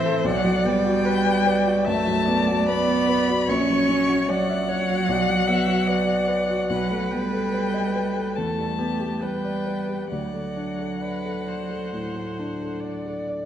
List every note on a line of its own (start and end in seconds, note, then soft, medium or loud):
0.00 0.22 A2 medium
0.00 0.26 E3 loud
0.00 0.28 A3 medium
0.00 0.28 C4 medium
0.00 0.05 A4 medium
0.00 0.28 C5 loud
0.00 0.28 C5 medium
0.00 0.27 E5 loud
0.00 0.28 E5 medium
0.05 0.25 A4 medium
0.24 1.82 B1 medium
0.24 0.65 F#3 loud
0.24 1.07 D5 loud
0.24 0.67 F#5 loud
0.44 0.78 F#3 medium
0.65 1.88 G3 loud
0.65 0.98 B3 medium
0.65 1.86 G5 loud
0.85 1.18 F#4 medium
1.06 1.48 B4 medium
1.06 1.39 B4 medium
1.26 1.58 D5 medium
1.47 1.79 B4 medium
1.47 1.86 D5 medium
1.67 1.99 F#4 medium
1.85 2.19 F#2 medium
1.85 2.68 A3 loud
1.85 2.27 E5 medium
1.85 2.67 A5 loud
2.07 2.40 F#3 medium
2.26 2.60 B3 medium
2.26 3.48 D5 loud
2.47 2.80 F#4 medium
2.67 3.48 B3 loud
2.67 3.01 B4 medium
2.67 3.51 B5 loud
2.88 3.20 D5 medium
3.09 3.41 B4 medium
3.28 3.48 F#4 medium
3.48 5.05 A#1 medium
3.48 4.31 C#4 loud
3.48 4.31 C#5 loud
3.48 4.30 C#6 loud
3.70 4.01 F#3 medium
3.89 4.21 C#4 medium
4.09 4.41 F#4 medium
4.29 6.69 F#3 loud
4.29 4.61 C#5 medium
4.29 4.70 D5 medium
4.29 6.69 F#5 loud
4.49 4.81 E5 medium
4.69 5.01 C#5 medium
4.69 5.11 C#5 medium
4.90 5.09 F#4 medium
5.09 6.66 B1 medium
5.09 5.49 D5 medium
5.30 5.61 F#3 medium
5.48 5.81 B3 medium
5.48 5.89 E5 medium
5.68 6.00 F#4 medium
5.88 6.21 B4 medium
5.88 6.71 D5 medium
6.07 6.40 D5 medium
6.28 6.61 B4 medium
6.49 6.70 F#4 medium
6.69 8.32 B1 medium
6.69 7.14 F#3 medium
6.69 8.36 B4 medium
6.69 7.12 F#5 loud
6.90 7.24 A3 medium
7.11 8.38 G3 medium
7.11 7.46 B3 medium
7.11 8.37 G5 loud
7.33 7.66 A4 medium
7.54 7.87 B4 medium
7.74 8.07 D#5 medium
7.96 8.29 B4 medium
8.16 8.37 A4 medium
8.36 10.07 E2 medium
8.36 9.24 A3 medium
8.36 8.80 A4 medium
8.36 9.24 A5 medium
8.58 8.92 G3 soft
8.79 9.14 B3 medium
8.79 9.23 G4 medium
9.00 9.35 G4 soft
9.21 10.11 G3 medium
9.21 10.10 B4 medium
9.21 9.58 B4 soft
9.21 10.10 G5 medium
9.44 9.79 D5 soft
9.67 10.02 B4 soft
9.89 10.11 G4 soft
10.10 11.89 D2 medium
10.10 13.23 F#3 medium
10.10 10.91 D5 medium
10.10 13.22 F#5 medium
10.33 10.70 A3 soft
10.56 10.93 D4 soft
10.79 11.15 A4 soft
11.02 11.50 B4 medium
11.02 11.38 D5 soft
11.25 11.61 A4 soft
11.47 12.82 C5 medium
11.47 11.83 D5 soft
11.70 12.06 A4 soft
11.93 12.29 A2 soft
12.16 12.51 A3 soft
12.39 12.74 D4 soft
12.62 12.96 A4 soft
12.81 13.45 D5 medium
12.81 13.19 D5 soft
13.06 13.41 A4 soft
13.29 13.45 D5 soft